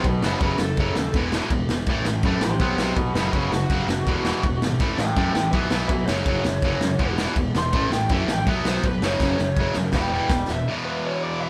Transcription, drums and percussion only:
0.04 kick loud
0.04 crash medium
0.23 snare loud
0.40 kick loud
0.40 crash medium
0.58 snare loud
0.77 kick loud
0.77 crash medium
0.96 snare loud
1.13 kick loud
1.13 crash medium
1.32 snare loud
1.50 kick loud
1.50 crash medium
1.69 snare loud
1.86 kick loud
1.86 crash medium
2.05 snare medium
2.23 kick loud
2.23 crash medium
2.41 snare loud
2.60 kick loud
2.60 crash medium
2.78 snare loud
2.96 kick loud
2.96 crash medium
3.15 snare loud
3.33 kick loud
3.33 crash medium
3.52 snare medium
3.70 kick loud
3.70 crash medium
3.89 snare medium
4.07 kick loud
4.07 crash medium
4.25 snare loud
4.43 kick loud
4.43 crash medium
4.62 snare loud
4.80 kick loud
4.80 crash medium
4.98 snare loud
5.16 kick loud
5.16 crash medium
5.35 snare loud
5.53 kick loud
5.53 crash medium
5.71 snare loud
5.89 kick loud
5.89 crash medium
6.08 snare loud
6.26 kick loud
6.26 crash medium
6.45 snare loud
6.62 kick loud
6.62 crash medium
6.81 snare loud
6.99 kick loud
6.99 crash medium
7.18 snare loud
7.36 kick loud
7.36 crash medium
7.55 snare loud
7.73 kick loud
7.73 crash medium
7.92 snare medium
8.09 kick loud
8.09 crash medium
8.28 snare loud
8.47 kick loud
8.47 crash medium
8.65 snare loud
8.83 kick loud
8.83 crash medium
9.02 snare loud
9.20 kick loud
9.20 snare medium
9.39 snare medium
9.57 kick loud
9.74 snare medium
9.92 kick loud
9.92 snare medium
10.29 kick loud
10.29 snare loud
10.48 snare medium

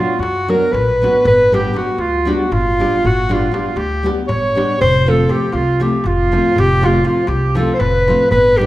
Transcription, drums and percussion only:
0.23 darbuka tek medium
0.36 darbuka tek soft
0.74 darbuka tek medium
0.74 darbuka dum medium
1.04 darbuka tek medium
1.27 darbuka dum medium
1.42 darbuka tek soft
1.54 darbuka tek medium
1.66 darbuka tek soft
1.76 darbuka tek medium
1.98 darbuka tek medium
2.29 darbuka tek medium
2.52 darbuka tek medium
2.52 darbuka dum medium
2.68 darbuka tek soft
2.81 darbuka tek medium
3.05 darbuka dum medium
3.18 darbuka tek soft
3.31 darbuka tek medium
3.43 darbuka tek soft
3.54 darbuka tek medium
3.66 darbuka tek soft
3.77 darbuka tek medium
3.91 darbuka tek soft
4.06 darbuka tek medium
4.29 darbuka tek medium
4.29 darbuka dum medium
4.58 darbuka tek medium
4.81 darbuka dum medium
4.95 darbuka tek soft
5.08 darbuka tek medium
5.19 darbuka tek soft
5.29 darbuka tek medium
5.52 darbuka tek medium
5.80 darbuka tek medium
6.04 darbuka tek medium
6.04 darbuka dum medium
6.33 darbuka tek medium
6.56 darbuka dum medium
6.70 darbuka tek soft
6.83 darbuka tek medium
6.94 darbuka tek soft
7.05 darbuka tek medium
7.27 darbuka tek medium
7.55 darbuka tek medium
7.80 darbuka tek medium
7.80 darbuka dum medium
7.95 darbuka tek soft
8.08 darbuka tek medium
8.31 darbuka dum loud
8.45 darbuka tek soft
8.57 darbuka tek medium

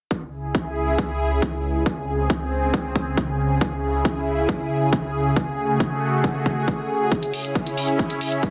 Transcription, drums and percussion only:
0.11 kick loud
0.55 kick loud
0.98 kick loud
1.42 kick loud
1.86 kick loud
2.30 kick loud
2.74 kick loud
2.96 kick medium
3.17 kick loud
3.61 kick loud
4.05 kick loud
4.49 kick loud
4.93 kick loud
5.36 kick loud
5.80 kick loud
6.24 kick loud
6.46 kick medium
6.68 kick loud
7.12 kick loud
7.12 closed hi-hat medium
7.23 closed hi-hat soft
7.34 open hi-hat medium
7.45 closed hi-hat soft
7.55 kick loud
7.55 closed hi-hat medium
7.66 closed hi-hat soft
7.77 open hi-hat medium
7.88 closed hi-hat soft
7.99 kick loud
7.99 closed hi-hat medium
8.10 closed hi-hat soft
8.21 open hi-hat medium
8.32 closed hi-hat soft
8.43 kick loud
8.43 closed hi-hat medium

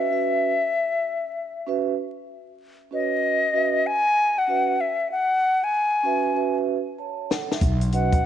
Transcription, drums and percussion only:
7.31 snare medium
7.51 snare medium
7.61 kick medium
7.61 closed hi-hat medium
7.81 closed hi-hat medium
7.92 closed hi-hat medium
8.12 kick medium
8.12 closed hi-hat medium

